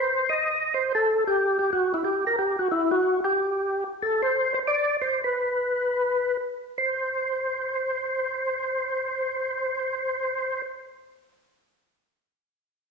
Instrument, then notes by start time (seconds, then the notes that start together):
tonewheel organ
Already playing: C5
0.29 D#5
0.74 C5
0.95 A4
1.27 G4
1.59 G4
1.73 F#4
1.94 E4
2.05 G4
2.27 A#4
2.39 G4
2.59 F#4
2.71 E4
2.91 F#4
3.24 G4
4.02 A4
4.22 C5
4.54 C5
4.67 D5
5.02 C5
5.24 B4
6.78 C5